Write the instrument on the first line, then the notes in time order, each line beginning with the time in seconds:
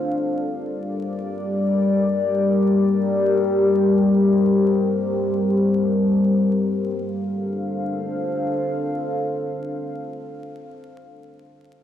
ambient pad
Already playing: G3 G4 A#4 D5
3.31 C5
6.69 D4 A4 C5 F5